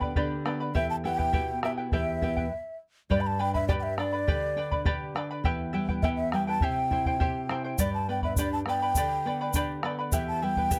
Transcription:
Already playing: nylon-string guitar D3 B3 D4 G4, quena G5
0.01 charango B4 D5 B5, bombo low
0.16 nylon-string guitar D3, charango G4 B4 D5 G5 B5, bombo low
0.45 nylon-string guitar B3 D4 G4, charango B4 D5 G5 B5, bombo rim
0.60 charango B4 D5 B5
0.75 nylon-string guitar E2, charango E4 G4 B4 E5 G5, quena E5, bombo low
0.90 quena A5
1.04 nylon-string guitar B3 E4 G4, charango E4 B4 E5 G5, quena G5
1.18 charango E4 B4 G5, bombo low
1.33 nylon-string guitar B2, charango E4 G4 B4 E5 G5, bombo low
1.63 nylon-string guitar B3 E4 G4, charango E4 B4 E5 G5, quena E5, bombo rim
1.78 charango E4 B4 G5
1.92 nylon-string guitar E2, charango E4 G4 B4 E5 G5, quena E5, bombo low
2.22 nylon-string guitar B3 E4 G4, charango E4 B4 E5 G5, bombo low
2.37 charango E4 B4 G5, bombo low
3.10 nylon-string guitar G2, charango G4 B4 D5 G5 B5, quena D5, bombo low
3.21 quena B5
3.27 quena A5
3.39 nylon-string guitar D4, charango B4 D5 G5 B5, quena G5
3.54 charango B4 D5 B5, quena E5, bombo low
3.68 nylon-string guitar G4, charango G4 B4 D5 G5 B5, quena D5, bombo low
3.80 quena E5 G5
3.98 nylon-string guitar D4, charango B4 D5 G5 B5, quena D5, bombo rim
4.13 charango B4 D5 B5
4.27 nylon-string guitar D3, charango G4 B4 D5 G5 B5, bombo low
4.56 nylon-string guitar D4, charango B4 D5 G5 B5
4.71 charango B4 D5 B5, bombo low
4.85 nylon-string guitar G4, charango G4 B4 D5 G5 B5, bombo low
5.15 nylon-string guitar D4, charango B4 D5 G5 B5, bombo rim
5.31 charango B4 D5 B5
5.44 nylon-string guitar E2, charango E4 G4 B4 E5 G5, bombo low
5.73 nylon-string guitar G3, charango E4 B4 E5 G5
5.89 charango E4 B4 G5, bombo low
6.02 nylon-string guitar B3, charango E4 G4 B4 E5 G5, quena E5, bombo low
6.17 quena E5
6.32 nylon-string guitar G3, charango E4 B4 E5 G5, quena G5, bombo rim
6.47 charango E4 B4 G5, quena A5
6.61 nylon-string guitar C3, charango E4 G4 C5 E5 G5, quena G5, bombo low
6.91 nylon-string guitar E4, charango E4 C5 E5 G5, bombo low
7.06 charango E4 C5 G5, bombo low
7.20 charango E4 G4 C5 E5 G5, nylon-string guitar G4, bombo low
7.49 nylon-string guitar E4, charango E4 C5 E5 G5, bombo rim
7.64 charango E4 C5 G5
7.78 nylon-string guitar G2, charango G4 B4 D5 G5 B5, quena D5, bombo low, shaker
7.94 quena A5
8.09 nylon-string guitar B3, charango B4 D5 G5 B5, quena G5
8.22 charango B4 D5 B5, quena E5, bombo low
8.36 nylon-string guitar D4, charango G4 B4 D5 G5 B5, quena D5, bombo low, shaker
8.53 quena A5
8.66 nylon-string guitar B3, charango B4 D5 G5 B5, quena G5, bombo rim
8.82 charango B4 D5 B5
8.95 nylon-string guitar D3, charango G4 B4 D5 G5 B5, bombo low, shaker
9.25 nylon-string guitar B3, charango B4 D5 G5 B5
9.41 charango B4 D5 B5
9.53 nylon-string guitar D4, charango G4 B4 D5 G5 B5, bombo low, shaker
9.83 nylon-string guitar B3, charango B4 D5 G5 B5, bombo rim
9.99 charango B4 D5 B5
10.12 nylon-string guitar E2, charango E4 G4 B4 E5 G5, quena E5, bombo low, shaker
10.28 quena A5
10.42 nylon-string guitar G3, charango E4 B4 E5 G5, quena G5
10.57 charango E4 B4 G5, bombo low
10.71 nylon-string guitar B3, charango E4 G4 B4 E5 G5, bombo low, shaker

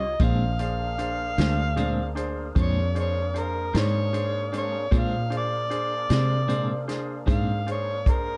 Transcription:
Already playing: fingered electric bass C2, tonewheel organ D#4 F4 G4 C#5, upright piano F4 G4 C#5, harmonica D#5
0.19 fingered electric bass A#1, clean electric guitar A#2 G#3 C4 D4, tonewheel organ A#3 D4 G#4 A#4, upright piano D4 G#4 C5, kick, closed hi-hat
0.24 harmonica F5
0.59 upright piano D4 G#4 C5, harmonica F5, closed hi-hat
0.98 upright piano D4 G#4 C5, closed hi-hat
1.38 fingered electric bass D2, clean electric guitar G#3 C4 D4, upright piano D4 G#4 C5, snare, closed hi-hat
1.76 clean electric guitar A#2 G#3 C4 D4, upright piano D4 G#4 C5, closed hi-hat
2.15 upright piano D4 G#4 C5, closed hi-hat
2.55 fingered electric bass F2, clean electric guitar A#2 G#3 C4 D4, upright piano D4 G#4 C5, kick, closed hi-hat
2.61 harmonica C#5
2.95 upright piano D4 G#4 C5, closed hi-hat
3.00 harmonica C#5
3.34 upright piano D4 G#4 C5, closed hi-hat
3.40 harmonica A#4
3.73 fingered electric bass G#2, clean electric guitar G#3 C4 D4, upright piano D4 G#4 C5, snare, closed hi-hat
3.79 harmonica C#5
4.13 upright piano D4 G#4 C5, closed hi-hat
4.52 clean electric guitar G#3 C4 D4, upright piano D4 G#4 C5, closed hi-hat
4.58 harmonica C#5
4.91 clean electric guitar A#2 G#3 C4 D4, fingered electric bass A#2, tonewheel organ A#3 D4 G#4 A#4, upright piano D4 G#4 C5, kick, closed hi-hat
4.99 harmonica F5
5.30 upright piano D4 G#4 C5, closed hi-hat
5.38 harmonica D5
5.70 upright piano D4 G#4 C5, closed hi-hat
6.09 fingered electric bass C3, clean electric guitar G#3 C4 D4, upright piano D4 G#4 C5, snare, closed hi-hat
6.48 clean electric guitar A#2 G#3 C4 D4, upright piano D4 G#4 C5, closed hi-hat
6.88 upright piano D4 G#4 C5, snare, closed hi-hat
7.26 fingered electric bass G#2, clean electric guitar A#2 G#3 C4 D4, upright piano D4 G#4 C5, kick, closed hi-hat
7.32 harmonica F5
7.66 upright piano D4 G#4 C5, closed hi-hat
7.71 harmonica C#5
8.06 upright piano D4 G#4 C5, harmonica A#4, kick, closed hi-hat

